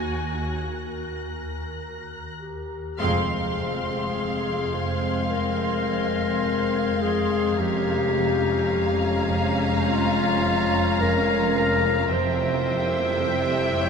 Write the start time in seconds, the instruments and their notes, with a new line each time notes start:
Already playing: cello section D#2, double bass section D#2, synth drone D#2, viola section F#4, violin section G#5 F#6 A#6
2.40 clarinet G4
2.98 double bass section F1, synth drone F2, cello section F2, french horn section G#3 C4, viola section C4, clarinet G#4, violin section F5 C6 F6
3.58 cello section F2
4.15 cello section F2, violin section G#6
4.73 cello section F2, clarinet C5
5.30 cello section F2, clarinet A#4
5.87 cello section F3
6.44 cello section F2
7.01 cello section F3, clarinet G#4
7.57 double bass section F1, cello section F2, synth drone F2, french horn section G#3 C#4, viola section C#4, clarinet G4, violin section F5 A#5
8.15 cello section F2
8.73 cello section F2
9.29 cello section F2
9.86 cello section F2, clarinet F4
10.43 cello section F3
10.99 cello section F2, clarinet A#4
11.56 cello section F3, clarinet A#4
12.12 double bass section F1, cello section F2, synth drone F2, viola section C3, french horn section G3 E4, clarinet C5, violin section E5 G5 E6 G6
12.69 cello section F2
13.26 cello section F2
13.81 cello section F2, clarinet C#5